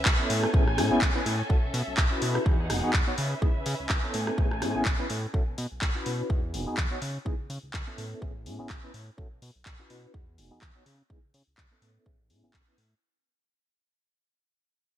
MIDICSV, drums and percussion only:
0, 0, Header, 1, 2, 480
1, 0, Start_track
1, 0, Tempo, 480000
1, 1498, Time_signature, 4, 2, 24, 8
1, 14973, End_track
2, 0, Start_track
2, 0, Title_t, "Drums"
2, 53, Note_on_c, 9, 39, 127
2, 58, Note_on_c, 9, 36, 117
2, 153, Note_off_c, 9, 39, 0
2, 158, Note_off_c, 9, 36, 0
2, 300, Note_on_c, 9, 46, 106
2, 400, Note_off_c, 9, 46, 0
2, 434, Note_on_c, 9, 37, 78
2, 534, Note_off_c, 9, 37, 0
2, 538, Note_on_c, 9, 36, 113
2, 638, Note_off_c, 9, 36, 0
2, 675, Note_on_c, 9, 37, 59
2, 775, Note_off_c, 9, 37, 0
2, 781, Note_on_c, 9, 37, 76
2, 781, Note_on_c, 9, 46, 102
2, 881, Note_off_c, 9, 37, 0
2, 881, Note_off_c, 9, 46, 0
2, 1014, Note_on_c, 9, 39, 126
2, 1018, Note_on_c, 9, 36, 116
2, 1114, Note_off_c, 9, 39, 0
2, 1118, Note_off_c, 9, 36, 0
2, 1261, Note_on_c, 9, 46, 109
2, 1361, Note_off_c, 9, 46, 0
2, 1498, Note_on_c, 9, 36, 114
2, 1598, Note_off_c, 9, 36, 0
2, 1739, Note_on_c, 9, 46, 108
2, 1839, Note_off_c, 9, 46, 0
2, 1972, Note_on_c, 9, 39, 122
2, 1979, Note_on_c, 9, 36, 113
2, 2072, Note_off_c, 9, 39, 0
2, 2079, Note_off_c, 9, 36, 0
2, 2217, Note_on_c, 9, 46, 107
2, 2317, Note_off_c, 9, 46, 0
2, 2352, Note_on_c, 9, 37, 79
2, 2452, Note_off_c, 9, 37, 0
2, 2459, Note_on_c, 9, 36, 112
2, 2559, Note_off_c, 9, 36, 0
2, 2699, Note_on_c, 9, 37, 79
2, 2699, Note_on_c, 9, 46, 111
2, 2799, Note_off_c, 9, 37, 0
2, 2799, Note_off_c, 9, 46, 0
2, 2932, Note_on_c, 9, 39, 118
2, 2940, Note_on_c, 9, 36, 118
2, 3032, Note_off_c, 9, 39, 0
2, 3040, Note_off_c, 9, 36, 0
2, 3178, Note_on_c, 9, 46, 106
2, 3278, Note_off_c, 9, 46, 0
2, 3420, Note_on_c, 9, 36, 113
2, 3520, Note_off_c, 9, 36, 0
2, 3658, Note_on_c, 9, 46, 106
2, 3758, Note_off_c, 9, 46, 0
2, 3893, Note_on_c, 9, 39, 115
2, 3900, Note_on_c, 9, 36, 110
2, 3993, Note_off_c, 9, 39, 0
2, 4000, Note_off_c, 9, 36, 0
2, 4138, Note_on_c, 9, 46, 108
2, 4238, Note_off_c, 9, 46, 0
2, 4272, Note_on_c, 9, 37, 85
2, 4372, Note_off_c, 9, 37, 0
2, 4380, Note_on_c, 9, 36, 115
2, 4480, Note_off_c, 9, 36, 0
2, 4514, Note_on_c, 9, 37, 60
2, 4614, Note_off_c, 9, 37, 0
2, 4619, Note_on_c, 9, 37, 80
2, 4619, Note_on_c, 9, 46, 103
2, 4719, Note_off_c, 9, 37, 0
2, 4719, Note_off_c, 9, 46, 0
2, 4852, Note_on_c, 9, 39, 114
2, 4859, Note_on_c, 9, 36, 117
2, 4952, Note_off_c, 9, 39, 0
2, 4959, Note_off_c, 9, 36, 0
2, 5097, Note_on_c, 9, 46, 104
2, 5197, Note_off_c, 9, 46, 0
2, 5339, Note_on_c, 9, 36, 106
2, 5439, Note_off_c, 9, 36, 0
2, 5579, Note_on_c, 9, 46, 102
2, 5679, Note_off_c, 9, 46, 0
2, 5815, Note_on_c, 9, 39, 114
2, 5819, Note_on_c, 9, 36, 112
2, 5915, Note_off_c, 9, 39, 0
2, 5919, Note_off_c, 9, 36, 0
2, 6059, Note_on_c, 9, 46, 99
2, 6159, Note_off_c, 9, 46, 0
2, 6299, Note_on_c, 9, 36, 110
2, 6399, Note_off_c, 9, 36, 0
2, 6539, Note_on_c, 9, 46, 95
2, 6639, Note_off_c, 9, 46, 0
2, 6772, Note_on_c, 9, 39, 110
2, 6778, Note_on_c, 9, 36, 116
2, 6872, Note_off_c, 9, 39, 0
2, 6878, Note_off_c, 9, 36, 0
2, 7018, Note_on_c, 9, 46, 102
2, 7118, Note_off_c, 9, 46, 0
2, 7258, Note_on_c, 9, 36, 106
2, 7358, Note_off_c, 9, 36, 0
2, 7499, Note_on_c, 9, 46, 94
2, 7599, Note_off_c, 9, 46, 0
2, 7735, Note_on_c, 9, 39, 105
2, 7740, Note_on_c, 9, 36, 109
2, 7835, Note_off_c, 9, 39, 0
2, 7840, Note_off_c, 9, 36, 0
2, 7982, Note_on_c, 9, 46, 97
2, 8082, Note_off_c, 9, 46, 0
2, 8219, Note_on_c, 9, 36, 97
2, 8319, Note_off_c, 9, 36, 0
2, 8461, Note_on_c, 9, 46, 90
2, 8561, Note_off_c, 9, 46, 0
2, 8696, Note_on_c, 9, 39, 109
2, 8700, Note_on_c, 9, 36, 107
2, 8796, Note_off_c, 9, 39, 0
2, 8800, Note_off_c, 9, 36, 0
2, 8941, Note_on_c, 9, 46, 93
2, 9041, Note_off_c, 9, 46, 0
2, 9180, Note_on_c, 9, 36, 99
2, 9280, Note_off_c, 9, 36, 0
2, 9421, Note_on_c, 9, 46, 95
2, 9521, Note_off_c, 9, 46, 0
2, 9655, Note_on_c, 9, 39, 117
2, 9660, Note_on_c, 9, 36, 98
2, 9755, Note_off_c, 9, 39, 0
2, 9760, Note_off_c, 9, 36, 0
2, 9900, Note_on_c, 9, 46, 89
2, 10000, Note_off_c, 9, 46, 0
2, 10140, Note_on_c, 9, 36, 99
2, 10240, Note_off_c, 9, 36, 0
2, 10382, Note_on_c, 9, 46, 93
2, 10482, Note_off_c, 9, 46, 0
2, 10615, Note_on_c, 9, 39, 109
2, 10620, Note_on_c, 9, 36, 102
2, 10715, Note_off_c, 9, 39, 0
2, 10720, Note_off_c, 9, 36, 0
2, 10861, Note_on_c, 9, 46, 94
2, 10961, Note_off_c, 9, 46, 0
2, 11100, Note_on_c, 9, 36, 96
2, 11200, Note_off_c, 9, 36, 0
2, 11340, Note_on_c, 9, 46, 96
2, 11440, Note_off_c, 9, 46, 0
2, 11574, Note_on_c, 9, 39, 115
2, 11580, Note_on_c, 9, 36, 103
2, 11674, Note_off_c, 9, 39, 0
2, 11680, Note_off_c, 9, 36, 0
2, 11821, Note_on_c, 9, 46, 94
2, 11921, Note_off_c, 9, 46, 0
2, 12060, Note_on_c, 9, 36, 98
2, 12160, Note_off_c, 9, 36, 0
2, 12300, Note_on_c, 9, 46, 94
2, 12400, Note_off_c, 9, 46, 0
2, 12535, Note_on_c, 9, 39, 112
2, 12539, Note_on_c, 9, 36, 104
2, 12635, Note_off_c, 9, 39, 0
2, 12639, Note_off_c, 9, 36, 0
2, 12780, Note_on_c, 9, 46, 94
2, 12880, Note_off_c, 9, 46, 0
2, 14973, End_track
0, 0, End_of_file